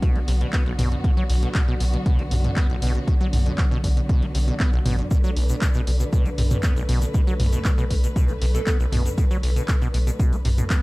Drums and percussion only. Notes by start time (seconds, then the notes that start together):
0.02 kick, closed hi-hat
0.16 closed hi-hat
0.28 open hi-hat
0.41 closed hi-hat
0.53 kick, clap, closed hi-hat
0.66 closed hi-hat
0.79 mid tom, open hi-hat
0.92 closed hi-hat
1.04 kick, closed hi-hat
1.17 closed hi-hat
1.30 open hi-hat
1.43 closed hi-hat
1.55 kick, clap, closed hi-hat
1.68 closed hi-hat
1.80 open hi-hat
1.94 closed hi-hat
2.06 kick, closed hi-hat
2.19 closed hi-hat
2.31 mid tom, open hi-hat
2.44 closed hi-hat, mid tom
2.56 kick, clap, closed hi-hat
2.70 closed hi-hat
2.82 open hi-hat
2.95 closed hi-hat
3.08 kick, closed hi-hat
3.21 closed hi-hat
3.33 mid tom, open hi-hat
3.46 closed hi-hat
3.58 kick, clap, closed hi-hat
3.72 closed hi-hat
3.84 kick, open hi-hat
3.97 closed hi-hat
4.09 kick, closed hi-hat
4.22 closed hi-hat
4.35 open hi-hat
4.48 closed hi-hat
4.60 kick, clap, closed hi-hat
4.73 closed hi-hat
4.86 mid tom, open hi-hat
4.99 closed hi-hat
5.11 kick, closed hi-hat, shaker
5.24 closed hi-hat, shaker
5.36 open hi-hat
5.49 closed hi-hat, shaker
5.62 kick, clap, closed hi-hat, shaker
5.74 closed hi-hat, shaker
5.87 open hi-hat
6.00 closed hi-hat, shaker
6.13 kick, closed hi-hat, shaker
6.25 closed hi-hat, shaker
6.38 mid tom, open hi-hat
6.51 closed hi-hat, mid tom, shaker
6.63 kick, clap, closed hi-hat, shaker
6.76 closed hi-hat, shaker
6.89 open hi-hat
7.01 closed hi-hat, shaker
7.14 kick, closed hi-hat, shaker
7.27 closed hi-hat, shaker
7.40 mid tom, open hi-hat
7.53 closed hi-hat, shaker
7.65 kick, clap, closed hi-hat, shaker
7.78 closed hi-hat, shaker
7.91 kick, open hi-hat
8.04 closed hi-hat, shaker
8.16 kick, closed hi-hat, shaker
8.28 closed hi-hat, shaker
8.42 open hi-hat
8.55 closed hi-hat, shaker
8.67 kick, clap, closed hi-hat, shaker
8.80 closed hi-hat, shaker
8.92 mid tom, open hi-hat
9.06 closed hi-hat, shaker
9.18 kick, closed hi-hat, shaker
9.31 closed hi-hat, shaker
9.43 open hi-hat
9.56 closed hi-hat, shaker
9.68 kick, clap, closed hi-hat, shaker
9.82 closed hi-hat, shaker
9.94 open hi-hat
10.07 closed hi-hat, shaker
10.19 kick, closed hi-hat, shaker
10.33 closed hi-hat, shaker
10.45 mid tom, open hi-hat
10.58 closed hi-hat, mid tom, shaker
10.70 kick, clap, closed hi-hat, shaker